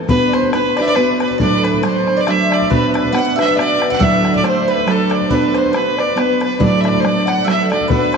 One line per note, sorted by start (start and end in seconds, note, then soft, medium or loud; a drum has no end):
0.00 0.10 E4 medium
0.09 0.52 B3 medium
0.09 0.53 D4 medium
0.09 0.55 F#4 medium
0.09 0.35 B4 loud
0.09 0.33 B4 medium
0.09 0.26 B4 medium
0.09 0.53 B4 medium
0.09 bodhran medium
0.28 0.35 D5 soft
0.33 0.52 C5 medium
0.33 0.53 C5 medium
0.33 bodhran medium
0.43 bodhran soft
0.52 0.77 B3 medium
0.52 0.77 D4 medium
0.52 0.78 F#4 medium
0.52 0.78 B4 medium
0.52 0.81 B4 medium
0.52 0.76 B4 medium
0.52 0.77 B4 medium
0.52 bodhran medium
0.76 0.96 D4 soft
0.76 0.97 F#4 soft
0.76 0.97 B4 medium
0.76 0.86 D5 medium
0.76 0.83 D5 medium
0.76 bodhran soft
0.81 0.88 E5 medium
0.86 0.97 D5 medium
0.86 0.97 D5 loud
0.86 0.96 D5 medium
0.95 1.39 B3 medium
0.95 1.40 D4 medium
0.95 1.40 F#4 medium
0.95 1.20 B4 loud
0.95 1.20 B4 medium
0.95 1.19 B4 medium
0.95 1.40 B4 medium
0.95 bodhran medium
1.20 1.38 B4 medium
1.20 1.41 B4 medium
1.20 1.39 B4 medium
1.20 bodhran medium
1.31 bodhran soft
1.38 1.83 D2 medium
1.38 1.83 A2 medium
1.38 1.82 F#3 medium
1.38 1.83 A3 medium
1.38 1.83 D4 medium
1.38 1.84 A4 medium
1.38 1.64 D5 medium
1.38 1.66 D5 medium
1.38 1.65 D5 medium
1.38 bodhran medium
1.64 1.83 B4 medium
1.64 1.85 B4 medium
1.64 1.82 B4 medium
1.64 bodhran soft
1.74 bodhran soft
1.83 2.27 F#3 medium
1.83 2.27 A3 medium
1.83 2.28 D4 medium
1.83 2.27 A4 medium
1.83 2.14 C5 medium
1.83 2.18 C5 medium
1.83 2.22 C5 medium
1.83 bodhran medium
2.07 bodhran soft
2.17 2.27 D5 medium
2.17 2.28 D5 medium
2.21 2.32 D5 loud
2.26 2.70 F#3 medium
2.26 2.70 A3 medium
2.26 2.70 D4 medium
2.26 2.70 A4 medium
2.26 2.52 E5 medium
2.26 2.67 E5 medium
2.26 bodhran medium
2.31 2.55 E5 loud
2.50 2.69 D5 medium
2.50 2.71 D5 loud
2.50 bodhran medium
2.62 bodhran soft
2.70 3.11 B3 medium
2.70 3.12 D4 medium
2.70 3.13 F#4 medium
2.70 2.92 B4 medium
2.70 3.13 B4 medium
2.70 2.93 B4 medium
2.70 bodhran medium
2.93 3.11 B4 medium
2.93 3.12 B4 medium
2.93 3.16 B4 medium
2.93 bodhran medium
3.05 bodhran soft
3.12 3.37 B3 medium
3.12 3.37 D4 medium
3.12 3.36 F#4 medium
3.12 3.36 B4 medium
3.12 3.38 F#5 medium
3.12 3.17 F#5 medium
3.12 3.38 F#5 loud
3.12 bodhran medium
3.19 3.24 F#5 medium
3.25 3.35 F#5 medium
3.36 3.56 D4 soft
3.36 3.56 F#4 medium
3.36 3.57 B4 medium
3.36 3.54 E5 medium
3.36 3.57 E5 medium
3.36 bodhran medium
3.40 3.57 E5 loud
3.55 3.81 B3 medium
3.55 3.80 D4 medium
3.55 3.79 F#4 medium
3.55 3.78 B4 medium
3.55 3.87 D5 medium
3.55 3.92 D5 medium
3.55 3.89 D5 loud
3.59 bodhran medium
3.79 3.98 D4 soft
3.79 4.00 F#4 soft
3.79 3.99 B4 soft
3.79 bodhran medium
3.90 3.99 F#5 medium
3.90 4.02 F#5 medium
3.90 4.04 F#5 medium
3.90 bodhran soft
3.99 4.43 D2 medium
3.99 4.43 A2 medium
3.99 4.42 F#3 medium
3.99 4.42 A3 medium
3.99 4.43 D4 medium
3.99 4.43 A4 medium
3.99 4.31 E5 medium
3.99 4.32 E5 medium
3.99 4.35 E5 loud
3.99 bodhran medium
4.25 bodhran soft
4.33 4.45 D5 medium
4.33 4.43 D5 medium
4.33 bodhran soft
4.37 4.44 D5 medium
4.42 4.86 F#3 medium
4.42 4.87 A3 medium
4.42 4.87 D4 medium
4.42 4.87 A4 medium
4.42 4.67 C5 medium
4.42 4.66 C5 medium
4.42 bodhran medium
4.47 4.72 C5 medium
4.67 4.85 B4 medium
4.67 4.86 B4 medium
4.67 4.93 B4 loud
4.86 5.29 F#3 medium
4.86 5.31 A3 medium
4.86 5.30 D4 medium
4.86 5.12 A4 medium
4.86 5.09 A4 medium
4.86 5.31 A4 medium
4.86 bodhran medium
4.91 5.16 A4 medium
5.09 5.28 D5 medium
5.09 5.29 D5 medium
5.09 bodhran medium
5.15 5.36 D5 medium
5.21 bodhran soft
5.29 5.73 B3 medium
5.29 5.74 D4 medium
5.29 5.75 F#4 medium
5.29 5.55 B4 medium
5.29 5.54 B4 medium
5.29 5.74 B4 medium
5.29 bodhran medium
5.34 5.59 B4 medium
5.53 5.73 C5 medium
5.53 5.72 C5 medium
5.53 bodhran soft
5.58 5.78 C5 medium
5.65 bodhran soft
5.73 6.15 B3 medium
5.73 6.17 D4 medium
5.73 6.17 F#4 medium
5.73 6.15 B4 medium
5.73 5.98 B4 medium
5.73 6.17 B4 medium
5.73 6.01 B4 medium
5.73 bodhran medium
5.97 6.16 D5 medium
5.97 6.20 D5 medium
5.97 bodhran soft
6.16 6.59 B3 medium
6.16 6.59 D4 medium
6.16 6.59 F#4 medium
6.16 6.39 B4 medium
6.16 6.60 B4 medium
6.16 6.41 B4 medium
6.16 bodhran medium
6.40 6.58 B4 medium
6.40 bodhran medium
6.45 6.61 B4 medium
6.58 7.03 D2 medium
6.58 7.03 A2 medium
6.58 7.03 F#3 medium
6.58 7.03 A3 medium
6.58 7.04 D4 medium
6.58 7.03 A4 medium
6.58 6.81 D5 medium
6.58 6.82 D5 medium
6.58 bodhran medium
6.64 6.82 D5 loud
6.81 6.89 D5 medium
6.81 7.01 D5 medium
6.81 6.90 E5 medium
6.85 7.01 D5 loud
6.85 bodhran soft
6.95 bodhran soft
7.00 7.45 F#3 medium
7.00 7.46 D4 medium
7.00 7.08 C5 medium
7.00 7.25 D5 medium
7.00 7.27 D5 medium
7.05 7.47 A3 medium
7.05 7.47 A4 medium
7.05 7.30 D5 loud
7.05 bodhran medium
7.26 7.49 F#5 loud
7.26 7.44 F#5 medium
7.26 7.47 F#5 loud
7.26 bodhran medium
7.44 7.70 F#3 medium
7.44 7.71 A3 medium
7.44 7.70 D4 medium
7.44 7.70 A4 medium
7.44 7.67 E5 medium
7.44 7.69 E5 medium
7.44 bodhran medium
7.49 7.70 E5 loud
7.70 7.90 F#3 soft
7.70 7.90 A3 soft
7.70 7.90 D4 soft
7.70 7.90 A4 soft
7.70 7.87 D5 medium
7.70 7.90 D5 medium
7.70 7.89 D5 medium
7.70 bodhran medium
7.81 bodhran soft
7.88 8.17 B3 medium
7.88 8.17 D4 medium
7.88 8.17 F#4 medium
7.88 8.11 B4 medium
7.88 8.14 B4 medium
7.88 8.17 B4 medium
7.88 bodhran medium
8.12 8.17 C5 medium
8.12 bodhran medium